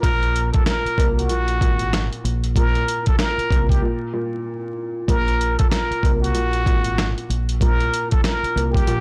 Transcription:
0.01 A#1 A#2 A#4, kick, closed hi-hat
0.23 closed hi-hat
0.36 closed hi-hat
0.53 A4, kick, closed hi-hat
0.66 A#4, snare, closed hi-hat
0.85 muted fingered electric bass stroke, closed hi-hat
0.98 C2 A#3, kick, closed hi-hat
1.18 F#4, closed hi-hat
1.29 A#1 A#2, closed hi-hat
1.48 closed hi-hat
1.61 G#1 A#2, kick, closed hi-hat
1.79 closed hi-hat
1.93 snare, closed hi-hat
2.13 closed hi-hat
2.24 A#1, closed hi-hat
2.44 closed hi-hat
2.56 A#2 A#4, kick, closed hi-hat
2.75 closed hi-hat
2.88 closed hi-hat
3.06 A4, kick, closed hi-hat
3.18 A#4, snare, closed hi-hat
3.38 muted fingered electric bass stroke, closed hi-hat
3.50 C2 A#3, kick, closed hi-hat
3.69 G4, kick, closed hi-hat
3.82 A#2
4.13 A#2
5.08 A#1 A#2 A#4, kick, closed hi-hat
5.28 closed hi-hat
5.41 closed hi-hat
5.58 A4, kick, closed hi-hat
5.70 A#4, snare, closed hi-hat
5.91 muted fingered electric bass stroke, closed hi-hat
6.03 C2 A#3, kick, closed hi-hat
6.21 F#4, closed hi-hat
6.34 A#1 A#2, closed hi-hat
6.53 closed hi-hat
6.66 G#1 A#2, kick, closed hi-hat
6.84 closed hi-hat
6.98 snare, closed hi-hat
7.18 closed hi-hat
7.29 A#1, closed hi-hat
7.49 closed hi-hat
7.61 A#2 A#4, kick, closed hi-hat
7.80 closed hi-hat
7.94 closed hi-hat
8.11 A4, kick, closed hi-hat
8.23 A#4, snare, closed hi-hat
8.43 muted fingered electric bass stroke, closed hi-hat
8.56 C2 A#3, closed hi-hat
8.71 G4, kick
8.77 closed hi-hat
8.87 A#1 A#2, closed hi-hat

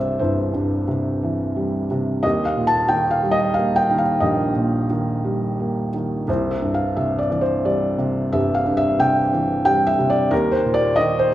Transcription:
Already playing: C2 G2 C3 E3 G3 E4 C5 D5 E5 F5
0.19 G1 E4 C5
0.53 G2
0.88 C3
1.23 E3
1.56 G3
1.91 C3
2.23 D#2 G4 D#5
2.45 F5
2.57 A#2
2.67 A5
2.88 D#3 G5
3.11 F5
3.23 G3
3.31 D#5
3.54 A#3 F5
3.76 G5
3.90 D#3
3.98 F5
4.20 A#1 G4 D#5
4.56 A#2
4.91 D#3
5.24 G3
5.60 A#3
5.94 D#3
6.28 C2 E4 C5
6.51 E5
6.62 G2
6.74 F5
6.96 C3 E5
7.18 D5
7.30 E3
7.41 C5
7.65 G3 D5
7.98 C3
8.33 G1 G4 E5
8.54 F5
8.65 G2
8.77 E5
8.99 C3 G5
9.33 E3
9.65 G3 G5
9.87 E5
9.99 C3
10.10 D5
10.31 D#2 G4 A#4
10.52 C5
10.65 A#2
10.74 D5
10.96 D#3 D#5
11.19 C5

